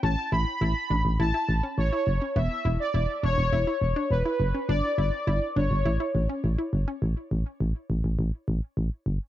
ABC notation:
X:1
M:4/4
L:1/16
Q:1/4=103
K:Amix
V:1 name="Analog polysynth"
a2 b6 a4 c4 | e3 d3 c6 B4 | d2 d4 c6 z4 | z16 |]
V:2 name="Synth arpeggio sound"
C2 E2 E2 D2 E E2 C2 E2 C | B,2 E2 E2 D2 E E2 D2 E2 C | D2 E2 E2 D2 E E2 C2 E2 C | z16 |]
V:3 name="FM bass" clef=bass
A,,, z A,,, z A,,, z A,,, A,,, A,,, z A,,, z A,,, z F,,, z | E,,, z E,,, z E,,, z E,,, E,,, E,,, z E,,, z E,,, z F,,, z | G,,, z G,,, z G,,, z G,,, G,,, A,,, z A,,, z A,,, z G,,, z | A,,, z A,,, z A,,, z A,,, A,,, A,,, z A,,, z A,,, z G,,, z |]